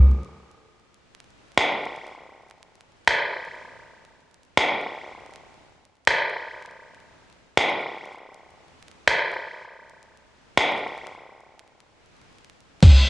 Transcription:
1.57 finger snap
3.07 finger snap
4.57 finger snap
6.07 finger snap
7.57 finger snap
9.07 finger snap
10.57 finger snap
12.82 kick, closed hi-hat, crash

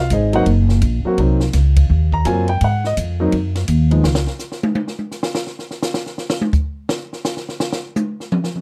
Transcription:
Already playing: F4 F5
0.10 G#1 D#4 G#4 C5 D#5, kick, hi-hat pedal, ride
0.33 F#3 A#3 C4 D#4 F#4 C5 D#5 F#5, ride
0.46 F#1, kick, ride
0.69 snare
0.82 A#1, kick, hi-hat pedal, ride
1.04 F#3 A#3 C4 F#4, muted upright bass stroke
1.18 C2 F#3 A#3 C4 D#4, kick, ride
1.40 snare
1.53 C#2, kick, snare, hi-hat pedal, ride
1.76 kick, ride
1.90 D#2, kick
2.12 A#5, kick
2.25 F#2 F#3 A#3 C4 F4 G#5, kick, hi-hat pedal, ride
2.48 G5, ride
2.61 G#2 F#5, kick, ride
2.84 D#5, snare
2.97 F2, kick, hi-hat pedal, ride
3.20 F#3 A#3 C4 D#4
3.32 F#2, kick, ride
3.56 snare, ride
3.68 D#2, kick, hi-hat pedal, ride
3.91 F3 G#3 B3 D#4, ride
4.04 C#2, snare
4.15 snare
4.27 snare
4.39 snare, hi-hat pedal
4.52 snare
4.63 high tom
4.75 high tom
4.88 snare
4.99 high tom
5.11 snare, hi-hat pedal
5.23 snare
5.35 snare
5.47 snare
5.59 snare
5.71 snare
5.83 snare, hi-hat pedal
5.94 snare
6.06 snare
6.18 snare
6.30 snare
6.41 high tom
6.53 kick, hi-hat pedal
6.89 snare
7.13 snare
7.25 snare, hi-hat pedal
7.37 snare
7.49 snare
7.60 snare
7.73 snare
7.96 hi-hat pedal, high tom
8.20 snare
8.32 mid tom
8.44 snare
8.55 mid tom

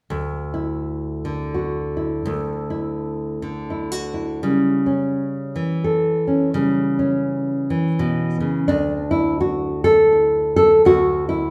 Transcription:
0.10 D2 A3
0.54 E4
1.25 D3
1.54 F#4
1.97 E4
2.26 D2 A3
2.70 E4
3.42 D3
3.70 E4
3.92 F#4
4.14 E4
4.43 C#3 G3
4.86 C#4
5.56 E3
5.84 A4
6.27 C#4
6.54 C#3 G3
6.99 C#4
7.70 E3
7.99 B2
8.40 C#3
8.68 D2 D4
9.11 E4
9.41 F#4
9.84 A4
10.13 E4
10.56 A4
10.85 D2 F#4
11.29 E4

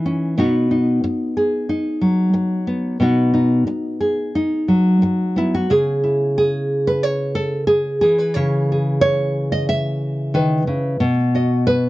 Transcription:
Already playing: E3 D#4 G#4
0.06 C#4
0.38 B2 B3 D#4 F#4
0.71 D#4
1.04 muted nylon-string guitar stroke
1.37 G#4
1.69 D#4
2.01 F#3
2.33 muted nylon-string guitar stroke
2.67 B3
3.00 B2 B3 D#4 F#4
3.34 D#4
3.67 muted nylon-string guitar stroke
4.01 G#4
4.35 D#4
4.68 F#3
5.02 muted nylon-string guitar stroke
5.36 B3 E4
5.55 F#4
5.70 C#3 G#4
6.04 E4
6.38 G#4
6.87 B4
7.03 C#5
7.35 A4
7.67 G#4
8.01 E3 G#4
8.18 B4
8.34 C#3 C#5
8.72 G#4
9.01 C#5
9.52 D#5
9.69 E5
10.34 D#3 B4
10.67 C#3
11.00 B2
11.35 F#4 D#5
11.67 B4

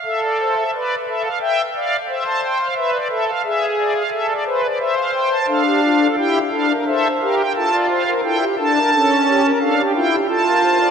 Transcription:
0.05 A4 E5
0.23 D5
0.40 C5
0.56 E5
0.74 B4 D5
1.07 A4 E5
1.23 F5
1.40 E5 G5
1.75 D5 F5
2.09 C5 E5
2.26 A5
2.44 G5
2.60 F5
2.75 B4 E5
2.92 D5
3.09 A4 E5
3.27 F5
3.44 G#4 E5
3.78 D5
3.95 F5
4.11 A4 E5
4.29 D5
4.45 B4 C5
4.63 D5
4.79 C5 E5
4.96 F5
5.14 G5
5.30 A5
5.48 D4 A4 F5
5.66 G4
5.84 F4
6.01 A4
6.17 E4 G4 G5
6.51 D4 A4 F5
6.70 A#4
6.86 A4 C5 E5
7.21 G4 A#4 F5
7.38 G5
7.55 F4 A4 A5
7.72 D5
7.89 C5 F5
8.06 A#4
8.23 E4 A4 G5
8.41 G4
8.58 D4 A4 A5
8.76 A#4
8.93 C#4 A4
9.28 G4
9.44 A#4
9.61 D4 A4 F5
9.78 G4
9.95 E4 F4 G5
10.13 G4
10.29 F4 A4 A5
10.47 A#4
10.63 C5
10.80 D5

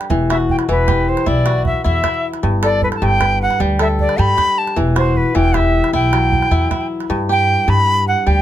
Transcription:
Already playing: G2 G3 G4 A4
0.01 calabash click
0.10 E1 E3, calabash thump
0.30 F#4 E5, calabash click
0.40 calabash click
0.49 G5, calabash thump
0.59 calabash click
0.68 E1 E3 B4
0.88 G4, calabash thump, calabash click
1.09 C5
1.17 calabash click
1.26 B1 E4 D5, calabash thump
1.46 F#4, calabash click
1.65 E5, calabash thump
1.84 E2 E4 E5
2.04 E4, calabash thump, calabash click
2.14 calabash click
2.34 calabash click
2.43 G1 G2, calabash thump
2.63 A4 D5, calabash click
2.82 B4, calabash thump
2.92 A5, calabash click
3.02 G1 G2 G5
3.21 B4, calabash thump, calabash click
3.42 F#5
3.51 calabash click
3.60 D2 G3, calabash thump
3.79 A4 E5, calabash click
3.89 calabash click
3.99 D5, calabash thump
4.09 calabash click
4.18 G2 G3 B5
4.37 G4, calabash thump, calabash click
4.48 calabash click
4.58 A5
4.67 calabash click
4.76 E1 E3, calabash thump, calabash click
4.87 calabash click
4.96 F#4 C5, calabash click
5.06 calabash click
5.16 B4, calabash thump
5.35 E1 E3 G5
5.45 calabash click
5.54 G4 E5, calabash thump, calabash click
5.64 calabash click
5.84 calabash click
5.93 B1 E4 G5, calabash thump
6.13 F#3, calabash click
6.32 calabash thump
6.42 calabash click
6.51 E2 E4
6.62 calabash click
6.71 E4, calabash thump, calabash click
6.81 calabash click
7.00 calabash click
7.10 G2
7.29 G4 G5
7.68 G2 B5
8.08 F#5
8.27 D2 G3 G5

